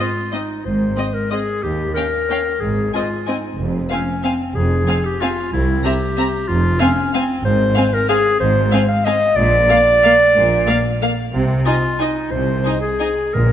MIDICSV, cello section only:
0, 0, Header, 1, 2, 480
1, 0, Start_track
1, 0, Tempo, 329128
1, 955, Time_signature, 3, 2, 24, 8
1, 4782, Tempo, 320856
1, 14382, Tempo, 328228
1, 18702, Tempo, 349447
1, 19902, End_track
2, 0, Start_track
2, 0, Title_t, "Cello section"
2, 0, Program_c, 0, 48
2, 950, Note_on_c, 0, 44, 51
2, 1339, Note_off_c, 0, 44, 0
2, 2385, Note_on_c, 0, 39, 55
2, 2776, Note_off_c, 0, 39, 0
2, 3822, Note_on_c, 0, 44, 54
2, 4215, Note_off_c, 0, 44, 0
2, 5251, Note_on_c, 0, 41, 59
2, 5651, Note_off_c, 0, 41, 0
2, 6689, Note_on_c, 0, 41, 63
2, 7093, Note_off_c, 0, 41, 0
2, 8134, Note_on_c, 0, 36, 62
2, 8536, Note_off_c, 0, 36, 0
2, 9588, Note_on_c, 0, 41, 67
2, 9980, Note_off_c, 0, 41, 0
2, 11014, Note_on_c, 0, 44, 71
2, 11405, Note_off_c, 0, 44, 0
2, 12450, Note_on_c, 0, 44, 77
2, 12845, Note_off_c, 0, 44, 0
2, 13901, Note_on_c, 0, 46, 81
2, 14297, Note_off_c, 0, 46, 0
2, 15335, Note_on_c, 0, 46, 78
2, 15734, Note_off_c, 0, 46, 0
2, 16781, Note_on_c, 0, 48, 72
2, 17170, Note_off_c, 0, 48, 0
2, 18211, Note_on_c, 0, 48, 57
2, 18612, Note_off_c, 0, 48, 0
2, 19660, Note_on_c, 0, 46, 56
2, 19902, Note_off_c, 0, 46, 0
2, 19902, End_track
0, 0, End_of_file